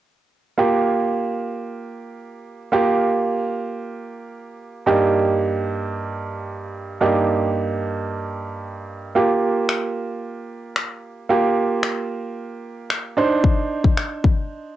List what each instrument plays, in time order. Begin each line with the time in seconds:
0.57 grand piano A#3 F4 G4
2.72 grand piano A#3 F4 G4
4.86 grand piano G2 A#3 D#4 G4
7.01 grand piano G2 A#3 D#4 G4
9.15 grand piano A#3 F4 G4
9.69 finger snap
10.76 finger snap
11.29 grand piano A#3 F4 G4
11.83 finger snap
12.90 finger snap
13.17 grand piano D4 D#4 C5
13.44 kick
13.84 kick
13.97 finger snap
14.24 kick